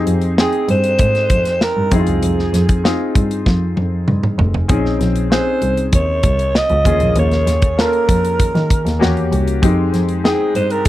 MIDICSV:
0, 0, Header, 1, 5, 480
1, 0, Start_track
1, 0, Tempo, 616650
1, 1733, Time_signature, 4, 2, 24, 8
1, 8474, End_track
2, 0, Start_track
2, 0, Title_t, "Alto saxophone"
2, 0, Program_c, 0, 65
2, 319, Note_on_c, 0, 68, 96
2, 530, Note_off_c, 0, 68, 0
2, 551, Note_on_c, 0, 72, 101
2, 1268, Note_on_c, 0, 70, 86
2, 1280, Note_off_c, 0, 72, 0
2, 1510, Note_on_c, 0, 68, 71
2, 1522, Note_off_c, 0, 70, 0
2, 2462, Note_off_c, 0, 68, 0
2, 4148, Note_on_c, 0, 72, 85
2, 4590, Note_off_c, 0, 72, 0
2, 4632, Note_on_c, 0, 73, 92
2, 5115, Note_on_c, 0, 75, 106
2, 5127, Note_off_c, 0, 73, 0
2, 5584, Note_off_c, 0, 75, 0
2, 5596, Note_on_c, 0, 73, 87
2, 6076, Note_on_c, 0, 70, 86
2, 6087, Note_off_c, 0, 73, 0
2, 7263, Note_off_c, 0, 70, 0
2, 7981, Note_on_c, 0, 68, 96
2, 8199, Note_off_c, 0, 68, 0
2, 8218, Note_on_c, 0, 72, 88
2, 8339, Note_on_c, 0, 70, 87
2, 8350, Note_off_c, 0, 72, 0
2, 8464, Note_off_c, 0, 70, 0
2, 8474, End_track
3, 0, Start_track
3, 0, Title_t, "Grand piano"
3, 0, Program_c, 1, 0
3, 0, Control_c, 1, 64, 127
3, 0, Note_on_c, 1, 60, 77
3, 0, Note_on_c, 1, 63, 76
3, 0, Note_on_c, 1, 67, 69
3, 0, Note_on_c, 1, 68, 92
3, 154, Note_off_c, 1, 60, 0
3, 156, Note_off_c, 1, 63, 0
3, 157, Note_off_c, 1, 67, 0
3, 160, Note_off_c, 1, 68, 0
3, 296, Note_on_c, 1, 60, 66
3, 298, Note_on_c, 1, 63, 59
3, 302, Note_on_c, 1, 79, 57
3, 307, Note_on_c, 1, 68, 69
3, 975, Note_off_c, 1, 60, 0
3, 977, Note_off_c, 1, 63, 0
3, 979, Note_off_c, 1, 79, 0
3, 981, Note_off_c, 1, 68, 0
3, 1488, Note_on_c, 1, 60, 70
3, 1494, Note_on_c, 1, 63, 71
3, 1496, Note_on_c, 1, 68, 80
3, 1498, Note_on_c, 1, 64, 51
3, 1505, Control_c, 1, 64, 0
3, 1547, Note_off_c, 1, 64, 0
3, 1547, Note_on_c, 1, 65, 71
3, 1617, Control_c, 1, 64, 127
3, 2067, Note_off_c, 1, 60, 0
3, 2070, Note_off_c, 1, 63, 0
3, 2071, Note_off_c, 1, 68, 0
3, 2097, Note_off_c, 1, 65, 0
3, 2209, Note_on_c, 1, 60, 67
3, 2211, Note_on_c, 1, 63, 69
3, 2214, Note_on_c, 1, 65, 72
3, 2217, Note_on_c, 1, 68, 78
3, 2893, Note_off_c, 1, 60, 0
3, 2893, Note_off_c, 1, 63, 0
3, 2895, Note_off_c, 1, 65, 0
3, 2897, Note_off_c, 1, 68, 0
3, 3645, Note_on_c, 1, 60, 82
3, 3647, Note_on_c, 1, 61, 75
3, 3654, Note_on_c, 1, 63, 77
3, 3657, Note_on_c, 1, 68, 82
3, 3665, Control_c, 1, 64, 0
3, 3782, Control_c, 1, 64, 127
3, 3990, Note_off_c, 1, 60, 0
3, 3991, Note_off_c, 1, 61, 0
3, 3995, Note_off_c, 1, 63, 0
3, 3996, Note_off_c, 1, 68, 0
3, 4126, Note_on_c, 1, 60, 58
3, 4131, Note_on_c, 1, 61, 57
3, 4133, Note_on_c, 1, 63, 54
3, 4137, Note_on_c, 1, 68, 71
3, 4811, Note_off_c, 1, 60, 0
3, 4813, Note_off_c, 1, 61, 0
3, 4815, Note_off_c, 1, 63, 0
3, 4816, Note_off_c, 1, 68, 0
3, 5334, Note_on_c, 1, 58, 72
3, 5338, Note_on_c, 1, 61, 68
3, 5341, Note_on_c, 1, 65, 66
3, 5342, Note_on_c, 1, 68, 85
3, 5346, Control_c, 1, 64, 0
3, 5464, Control_c, 1, 64, 127
3, 5909, Note_off_c, 1, 58, 0
3, 5911, Note_off_c, 1, 61, 0
3, 5913, Note_off_c, 1, 65, 0
3, 5914, Note_off_c, 1, 68, 0
3, 6050, Note_on_c, 1, 58, 62
3, 6055, Note_on_c, 1, 61, 60
3, 6058, Note_on_c, 1, 65, 59
3, 6064, Note_on_c, 1, 69, 57
3, 6109, Note_off_c, 1, 69, 0
3, 6113, Note_on_c, 1, 70, 66
3, 6732, Note_off_c, 1, 58, 0
3, 6734, Note_off_c, 1, 61, 0
3, 6735, Note_off_c, 1, 65, 0
3, 6763, Note_off_c, 1, 70, 0
3, 6999, Note_on_c, 1, 58, 82
3, 7004, Note_on_c, 1, 61, 78
3, 7006, Note_on_c, 1, 66, 80
3, 7013, Note_on_c, 1, 67, 94
3, 7023, Control_c, 1, 64, 0
3, 7146, Control_c, 1, 64, 127
3, 7389, Note_off_c, 1, 58, 0
3, 7392, Note_off_c, 1, 61, 0
3, 7393, Note_off_c, 1, 66, 0
3, 7396, Note_off_c, 1, 67, 0
3, 7488, Note_on_c, 1, 56, 88
3, 7493, Note_on_c, 1, 60, 75
3, 7494, Note_on_c, 1, 63, 76
3, 7496, Note_on_c, 1, 67, 98
3, 7500, Control_c, 1, 64, 0
3, 7656, Control_c, 1, 64, 127
3, 7829, Note_off_c, 1, 56, 0
3, 7832, Note_off_c, 1, 60, 0
3, 7832, Note_off_c, 1, 63, 0
3, 7833, Note_off_c, 1, 67, 0
3, 7970, Note_on_c, 1, 60, 59
3, 7970, Note_on_c, 1, 68, 66
3, 7974, Note_on_c, 1, 63, 55
3, 7975, Note_on_c, 1, 79, 73
3, 8474, Note_off_c, 1, 60, 0
3, 8474, Note_off_c, 1, 63, 0
3, 8474, Note_off_c, 1, 68, 0
3, 8474, Note_off_c, 1, 79, 0
3, 8474, End_track
4, 0, Start_track
4, 0, Title_t, "Double bass"
4, 0, Program_c, 2, 43
4, 50, Note_on_c, 2, 41, 87
4, 224, Note_off_c, 2, 41, 0
4, 531, Note_on_c, 2, 43, 80
4, 705, Note_off_c, 2, 43, 0
4, 773, Note_on_c, 2, 44, 81
4, 946, Note_off_c, 2, 44, 0
4, 1010, Note_on_c, 2, 41, 62
4, 1184, Note_off_c, 2, 41, 0
4, 1372, Note_on_c, 2, 43, 71
4, 1459, Note_off_c, 2, 43, 0
4, 1493, Note_on_c, 2, 41, 97
4, 1580, Note_off_c, 2, 41, 0
4, 1613, Note_on_c, 2, 36, 83
4, 1700, Note_off_c, 2, 36, 0
4, 1730, Note_on_c, 2, 41, 90
4, 1904, Note_off_c, 2, 41, 0
4, 1972, Note_on_c, 2, 41, 89
4, 2146, Note_off_c, 2, 41, 0
4, 2454, Note_on_c, 2, 43, 70
4, 2627, Note_off_c, 2, 43, 0
4, 2695, Note_on_c, 2, 41, 77
4, 2868, Note_off_c, 2, 41, 0
4, 2931, Note_on_c, 2, 41, 77
4, 3105, Note_off_c, 2, 41, 0
4, 3172, Note_on_c, 2, 43, 75
4, 3345, Note_off_c, 2, 43, 0
4, 3410, Note_on_c, 2, 29, 80
4, 3584, Note_off_c, 2, 29, 0
4, 3656, Note_on_c, 2, 34, 88
4, 3828, Note_off_c, 2, 34, 0
4, 3894, Note_on_c, 2, 34, 96
4, 4067, Note_off_c, 2, 34, 0
4, 4375, Note_on_c, 2, 36, 74
4, 4547, Note_off_c, 2, 36, 0
4, 4616, Note_on_c, 2, 39, 81
4, 4788, Note_off_c, 2, 39, 0
4, 4854, Note_on_c, 2, 36, 77
4, 5027, Note_off_c, 2, 36, 0
4, 5217, Note_on_c, 2, 37, 89
4, 5303, Note_off_c, 2, 37, 0
4, 5334, Note_on_c, 2, 39, 83
4, 5420, Note_off_c, 2, 39, 0
4, 5455, Note_on_c, 2, 34, 80
4, 5541, Note_off_c, 2, 34, 0
4, 5576, Note_on_c, 2, 39, 101
4, 5747, Note_off_c, 2, 39, 0
4, 5811, Note_on_c, 2, 39, 81
4, 5985, Note_off_c, 2, 39, 0
4, 6294, Note_on_c, 2, 41, 81
4, 6466, Note_off_c, 2, 41, 0
4, 6535, Note_on_c, 2, 51, 41
4, 6623, Note_off_c, 2, 51, 0
4, 6656, Note_on_c, 2, 51, 88
4, 6741, Note_off_c, 2, 51, 0
4, 6892, Note_on_c, 2, 39, 80
4, 6978, Note_off_c, 2, 39, 0
4, 7013, Note_on_c, 2, 40, 78
4, 7185, Note_off_c, 2, 40, 0
4, 7255, Note_on_c, 2, 36, 90
4, 7426, Note_off_c, 2, 36, 0
4, 7494, Note_on_c, 2, 41, 107
4, 7665, Note_off_c, 2, 41, 0
4, 7729, Note_on_c, 2, 41, 87
4, 7902, Note_off_c, 2, 41, 0
4, 8210, Note_on_c, 2, 43, 81
4, 8382, Note_off_c, 2, 43, 0
4, 8474, End_track
5, 0, Start_track
5, 0, Title_t, "Drums"
5, 54, Note_on_c, 9, 42, 64
5, 131, Note_off_c, 9, 42, 0
5, 168, Note_on_c, 9, 42, 47
5, 245, Note_off_c, 9, 42, 0
5, 298, Note_on_c, 9, 38, 107
5, 375, Note_off_c, 9, 38, 0
5, 409, Note_on_c, 9, 42, 32
5, 486, Note_off_c, 9, 42, 0
5, 534, Note_on_c, 9, 42, 64
5, 612, Note_off_c, 9, 42, 0
5, 651, Note_on_c, 9, 42, 52
5, 729, Note_off_c, 9, 42, 0
5, 768, Note_on_c, 9, 42, 77
5, 773, Note_on_c, 9, 36, 82
5, 845, Note_off_c, 9, 42, 0
5, 851, Note_off_c, 9, 36, 0
5, 894, Note_on_c, 9, 42, 29
5, 900, Note_on_c, 9, 38, 32
5, 971, Note_off_c, 9, 42, 0
5, 978, Note_off_c, 9, 38, 0
5, 1010, Note_on_c, 9, 42, 74
5, 1011, Note_on_c, 9, 36, 77
5, 1087, Note_off_c, 9, 42, 0
5, 1089, Note_off_c, 9, 36, 0
5, 1132, Note_on_c, 9, 42, 51
5, 1138, Note_on_c, 9, 38, 30
5, 1209, Note_off_c, 9, 42, 0
5, 1216, Note_off_c, 9, 38, 0
5, 1255, Note_on_c, 9, 38, 86
5, 1332, Note_off_c, 9, 38, 0
5, 1490, Note_on_c, 9, 42, 67
5, 1492, Note_on_c, 9, 36, 88
5, 1567, Note_off_c, 9, 42, 0
5, 1569, Note_off_c, 9, 36, 0
5, 1608, Note_on_c, 9, 42, 52
5, 1686, Note_off_c, 9, 42, 0
5, 1732, Note_on_c, 9, 42, 72
5, 1810, Note_off_c, 9, 42, 0
5, 1862, Note_on_c, 9, 38, 30
5, 1940, Note_off_c, 9, 38, 0
5, 1977, Note_on_c, 9, 42, 57
5, 1979, Note_on_c, 9, 38, 33
5, 2054, Note_off_c, 9, 42, 0
5, 2057, Note_off_c, 9, 38, 0
5, 2092, Note_on_c, 9, 42, 47
5, 2095, Note_on_c, 9, 36, 76
5, 2170, Note_off_c, 9, 42, 0
5, 2173, Note_off_c, 9, 36, 0
5, 2219, Note_on_c, 9, 38, 98
5, 2297, Note_off_c, 9, 38, 0
5, 2455, Note_on_c, 9, 36, 86
5, 2457, Note_on_c, 9, 42, 60
5, 2533, Note_off_c, 9, 36, 0
5, 2535, Note_off_c, 9, 42, 0
5, 2576, Note_on_c, 9, 42, 52
5, 2654, Note_off_c, 9, 42, 0
5, 2696, Note_on_c, 9, 36, 76
5, 2702, Note_on_c, 9, 38, 48
5, 2773, Note_off_c, 9, 36, 0
5, 2780, Note_off_c, 9, 38, 0
5, 2934, Note_on_c, 9, 48, 65
5, 3012, Note_off_c, 9, 48, 0
5, 3173, Note_on_c, 9, 47, 72
5, 3251, Note_off_c, 9, 47, 0
5, 3296, Note_on_c, 9, 45, 75
5, 3374, Note_off_c, 9, 45, 0
5, 3416, Note_on_c, 9, 43, 80
5, 3494, Note_off_c, 9, 43, 0
5, 3537, Note_on_c, 9, 43, 75
5, 3614, Note_off_c, 9, 43, 0
5, 3651, Note_on_c, 9, 42, 71
5, 3654, Note_on_c, 9, 36, 100
5, 3729, Note_off_c, 9, 42, 0
5, 3732, Note_off_c, 9, 36, 0
5, 3781, Note_on_c, 9, 38, 30
5, 3859, Note_off_c, 9, 38, 0
5, 3898, Note_on_c, 9, 42, 60
5, 3900, Note_on_c, 9, 38, 32
5, 3975, Note_off_c, 9, 42, 0
5, 3978, Note_off_c, 9, 38, 0
5, 4013, Note_on_c, 9, 42, 48
5, 4091, Note_off_c, 9, 42, 0
5, 4140, Note_on_c, 9, 38, 105
5, 4217, Note_off_c, 9, 38, 0
5, 4373, Note_on_c, 9, 42, 62
5, 4450, Note_off_c, 9, 42, 0
5, 4495, Note_on_c, 9, 42, 54
5, 4573, Note_off_c, 9, 42, 0
5, 4613, Note_on_c, 9, 42, 80
5, 4615, Note_on_c, 9, 36, 77
5, 4691, Note_off_c, 9, 42, 0
5, 4693, Note_off_c, 9, 36, 0
5, 4850, Note_on_c, 9, 42, 77
5, 4853, Note_on_c, 9, 36, 91
5, 4928, Note_off_c, 9, 42, 0
5, 4931, Note_off_c, 9, 36, 0
5, 4975, Note_on_c, 9, 42, 50
5, 5053, Note_off_c, 9, 42, 0
5, 5099, Note_on_c, 9, 38, 86
5, 5177, Note_off_c, 9, 38, 0
5, 5211, Note_on_c, 9, 42, 33
5, 5289, Note_off_c, 9, 42, 0
5, 5334, Note_on_c, 9, 36, 80
5, 5338, Note_on_c, 9, 42, 65
5, 5412, Note_off_c, 9, 36, 0
5, 5416, Note_off_c, 9, 42, 0
5, 5449, Note_on_c, 9, 42, 45
5, 5527, Note_off_c, 9, 42, 0
5, 5570, Note_on_c, 9, 42, 75
5, 5648, Note_off_c, 9, 42, 0
5, 5694, Note_on_c, 9, 42, 30
5, 5700, Note_on_c, 9, 38, 30
5, 5772, Note_off_c, 9, 42, 0
5, 5778, Note_off_c, 9, 38, 0
5, 5817, Note_on_c, 9, 42, 65
5, 5819, Note_on_c, 9, 38, 30
5, 5894, Note_off_c, 9, 42, 0
5, 5897, Note_off_c, 9, 38, 0
5, 5930, Note_on_c, 9, 42, 47
5, 5934, Note_on_c, 9, 36, 79
5, 6008, Note_off_c, 9, 42, 0
5, 6012, Note_off_c, 9, 36, 0
5, 6061, Note_on_c, 9, 38, 98
5, 6139, Note_off_c, 9, 38, 0
5, 6173, Note_on_c, 9, 42, 32
5, 6251, Note_off_c, 9, 42, 0
5, 6295, Note_on_c, 9, 36, 84
5, 6296, Note_on_c, 9, 42, 62
5, 6373, Note_off_c, 9, 36, 0
5, 6374, Note_off_c, 9, 42, 0
5, 6419, Note_on_c, 9, 42, 53
5, 6496, Note_off_c, 9, 42, 0
5, 6535, Note_on_c, 9, 42, 75
5, 6536, Note_on_c, 9, 36, 78
5, 6613, Note_off_c, 9, 36, 0
5, 6613, Note_off_c, 9, 42, 0
5, 6657, Note_on_c, 9, 42, 31
5, 6664, Note_on_c, 9, 38, 32
5, 6735, Note_off_c, 9, 42, 0
5, 6741, Note_off_c, 9, 38, 0
5, 6775, Note_on_c, 9, 36, 81
5, 6778, Note_on_c, 9, 42, 79
5, 6853, Note_off_c, 9, 36, 0
5, 6856, Note_off_c, 9, 42, 0
5, 6901, Note_on_c, 9, 42, 47
5, 6907, Note_on_c, 9, 38, 32
5, 6979, Note_off_c, 9, 42, 0
5, 6985, Note_off_c, 9, 38, 0
5, 7025, Note_on_c, 9, 38, 84
5, 7103, Note_off_c, 9, 38, 0
5, 7138, Note_on_c, 9, 42, 30
5, 7216, Note_off_c, 9, 42, 0
5, 7259, Note_on_c, 9, 42, 64
5, 7337, Note_off_c, 9, 42, 0
5, 7376, Note_on_c, 9, 42, 50
5, 7454, Note_off_c, 9, 42, 0
5, 7494, Note_on_c, 9, 36, 95
5, 7495, Note_on_c, 9, 42, 78
5, 7572, Note_off_c, 9, 36, 0
5, 7573, Note_off_c, 9, 42, 0
5, 7735, Note_on_c, 9, 42, 56
5, 7738, Note_on_c, 9, 38, 29
5, 7813, Note_off_c, 9, 42, 0
5, 7816, Note_off_c, 9, 38, 0
5, 7851, Note_on_c, 9, 42, 46
5, 7929, Note_off_c, 9, 42, 0
5, 7979, Note_on_c, 9, 38, 108
5, 8057, Note_off_c, 9, 38, 0
5, 8214, Note_on_c, 9, 42, 64
5, 8292, Note_off_c, 9, 42, 0
5, 8332, Note_on_c, 9, 42, 48
5, 8410, Note_off_c, 9, 42, 0
5, 8448, Note_on_c, 9, 42, 82
5, 8474, Note_off_c, 9, 42, 0
5, 8474, End_track
0, 0, End_of_file